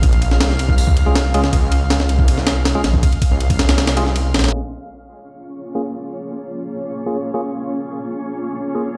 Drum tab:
RD |x-x-x---x---x-------x---x---x---|x---x---x---x---x---x---x---x---|x-x-x---x-x-x-x-x-x-x---x---xxxx|--------------------------------|
HH |----------------o---------------|--------------------------------|--------------------------------|--------------------------------|
SD |------o-o-o-------------o-----o-|--------o-o-------o-o---o---o---|------------o-o-o-o---o-----oooo|--------------------------------|
BD |o-------------o---o-------------|o-------------o---------------o-|o---o-----o---------------------|--------------------------------|

RD |--------------------------------|--------------------------------|
HH |--------------------------------|--------------------------------|
SD |--------------------------------|--------------------------------|
BD |--------------------------------|--------------------------------|